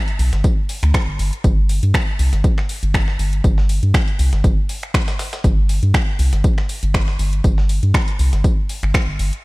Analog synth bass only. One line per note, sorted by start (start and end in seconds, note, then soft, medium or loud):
0.19 0.31 B1 loud
0.33 0.42 G1 medium
0.83 0.92 D2 medium
1.08 1.17 G1 medium
1.19 1.31 G1 medium
1.44 1.79 G1 loud
1.83 1.92 G2 medium
2.19 2.31 C2 medium
2.33 2.42 G1 medium
2.83 3.16 G1 medium
3.19 3.41 G1 loud
3.44 3.79 G1 loud
3.83 3.92 G2 medium
4.19 4.31 C2 medium
4.33 4.42 G1 medium
4.44 4.56 G1 loud
5.44 5.79 G1 loud
5.83 5.92 G2 medium
6.19 6.31 C2 medium
6.33 6.42 G1 medium
6.83 7.16 G1 medium
7.19 7.41 G1 loud
7.44 7.79 G1 loud
7.83 7.92 G2 medium
8.19 8.31 C2 medium
8.33 8.42 G1 medium
8.83 8.92 G1 medium
9.08 9.17 G1 medium
9.19 9.31 G1 medium